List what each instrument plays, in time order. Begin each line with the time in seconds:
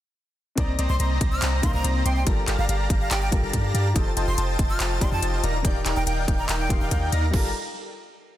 0.55 808-style bass C2, felt piano C3 A#3 D#4, supersaw synth C4 C5 D5 D#5 A#5, digital synth lead A#5, kick, closed hi-hat
0.59 felt piano D5
0.79 808-style bass C2, supersaw synth C4 C5 D5 D#5 A#5, digital synth lead A#5, closed hi-hat
0.89 808-style bass C2, supersaw synth C4 C5 D5 D#5 C6, flute C6, digital synth lead C6
1.00 808-style bass C2, supersaw synth C4 C5 D5 D#5 A#5, digital synth lead A#5, flute C6, closed hi-hat
1.21 808-style bass C2, supersaw synth C4 C5 D5 D#5, digital synth lead A#5, kick, closed hi-hat
1.32 flute F6
1.42 808-style bass C2, supersaw synth C4 C5 D5 D#5 A#5, digital synth lead A#5, clap, closed hi-hat
1.62 808-style bass C2, felt piano C3 A#3 D#4 F5, supersaw synth C4 C5 D5 D#5 A#5, digital synth lead A#5, flute C6, kick, closed hi-hat
1.74 808-style bass C2, supersaw synth C4 C5 D5 D#5 A#5, flute A#5, digital synth lead A#5
1.84 808-style bass C2, supersaw synth C4 C5 D5 D#5 A#5, digital synth lead A#5, closed hi-hat
2.05 808-style bass C2, supersaw synth C4 C5 D5 D#5 C6, flute G5, digital synth lead C6, closed hi-hat
2.16 flute G5
2.25 808-style bass G1, felt piano G3 F4 A4, supersaw synth G4 D5 F5 A5 A#5, digital synth lead A#5, kick, closed hi-hat
2.29 felt piano A#4
2.48 808-style bass G1, supersaw synth G4 D5 F5 A5 A#5, digital synth lead A#5, clap, closed hi-hat
2.58 808-style bass G1, supersaw synth G4 D5 F5 A5 A#5, flute F5, digital synth lead A#5
2.69 808-style bass G1, supersaw synth G4 D5 F5 A5 A#5, flute F5, digital synth lead A#5, closed hi-hat
2.90 808-style bass G1, supersaw synth G4, digital synth lead A#5, kick, closed hi-hat
3.01 flute F5
3.11 808-style bass G1, supersaw synth G4 D5 F5 A5 A#5, flute G5, digital synth lead A#5, clap, closed hi-hat
3.22 flute G5
3.31 808-style bass G1, felt piano G3 F4 A4 A#4, supersaw synth G4 D5 F5 A5 A#5, digital synth lead A#5, kick, closed hi-hat
3.43 808-style bass G1, supersaw synth G4 D5 F5 A5 A#5, digital synth lead A#5
3.53 808-style bass G2, supersaw synth G4 D5 F5 A5 A#5, digital synth lead A#5, kick, closed hi-hat
3.74 808-style bass G2, supersaw synth G4 D5 F5 A5 A#5, digital synth lead A#5, closed hi-hat
3.94 808-style bass F1, felt piano F3 D#4 G4 A4, supersaw synth F4 C5 D#5 G5 A5, digital synth lead A5, kick, closed hi-hat
4.17 808-style bass F1, supersaw synth F4 C5 D#5 G5 A5, digital synth lead A5, closed hi-hat
4.28 808-style bass F1, supersaw synth F4 C5 D#5 G5 C6, flute C6, digital synth lead C6
4.38 808-style bass F1, supersaw synth F4 C5 D#5 G5 A5, digital synth lead A5, flute C6, closed hi-hat
4.59 808-style bass F1, supersaw synth F4 C5 A5, digital synth lead A5, kick, closed hi-hat
4.70 flute F6
4.80 808-style bass F1, supersaw synth F4 C5 D#5 G5 A5, digital synth lead A5, clap, closed hi-hat
5.00 808-style bass F1, felt piano F3 D#4 G4 D5, digital synth lead A5, flute C6, kick, closed hi-hat
5.12 808-style bass F2, supersaw synth F4 C5 D#5 G5 A5, digital synth lead A5, flute A5
5.22 808-style bass F1, supersaw synth F4 C5 D#5 G5 A5, digital synth lead A5, closed hi-hat
5.43 808-style bass D#1, supersaw synth D#4 A#4 D5 F5 A#5, digital synth lead A#5, closed hi-hat
5.63 felt piano D#3 D#4 G4, supersaw synth D#4 A#4 D5 F5 G5, digital synth lead G5, kick, closed hi-hat
5.67 felt piano D5
5.86 808-style bass D#1, supersaw synth D#4 A#4 D5 F5 G5, digital synth lead G5, clap, closed hi-hat
5.96 808-style bass D#1, supersaw synth D#4 A#4 D5 F5 A#5, flute G5, digital synth lead A#5
6.07 808-style bass D#1, supersaw synth D#4 A#4 D5 F5 G5, flute G5, digital synth lead G5, closed hi-hat
6.28 808-style bass D#1, supersaw synth D#4 A#4 D5 F5 G5, digital synth lead G5, kick, closed hi-hat
6.39 flute A#5
6.49 808-style bass D#1, supersaw synth D#4 A#4 D5 F5 G5, digital synth lead G5, flute A#5, clap, closed hi-hat
6.59 flute G5
6.69 808-style bass D#1, felt piano D#3 D#4 G4 F5, supersaw synth D#4 F5 C6, digital synth lead C6, kick, closed hi-hat
6.81 808-style bass D#1, supersaw synth D#4 A#4 D5 F5 G5, flute F5, digital synth lead G5
6.91 808-style bass D#2, supersaw synth D#4 A#4 D5 F5 G5, flute F5, digital synth lead G5, kick, closed hi-hat
7.12 808-style bass D#2, supersaw synth D#4 A#4 D5 F5 A#5, digital synth lead A#5, closed hi-hat
7.31 808-style bass G1, felt piano G3 F4 A4, supersaw synth G4 D5 F5 A5 A#5, digital synth lead A#5, kick, crash
7.37 felt piano A#4